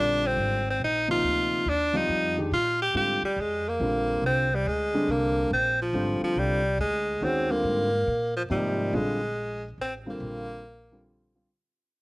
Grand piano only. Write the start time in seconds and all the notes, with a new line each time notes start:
Already playing: D3 G3 C4 F4
1.08 C3 F3 A#3 D#4
1.93 F3 G3 C4 F4
2.37 D#3 G#3 D4 G4
2.94 D3 G3 C4 F4
3.80 D3 G3 C4 F4
4.93 D3 G3 C4 D4
5.93 D3 G3 C4 F4
7.22 D#3 G#3 C#4 F#4
7.49 D3 G3 C4 F4
8.50 C3 F3 A#3 D#4
8.93 D3 G3 C4 F4
10.06 D3 G3 C4 F4
10.92 D3 G3 C4 F4
11.35 D3 G3 C4 F4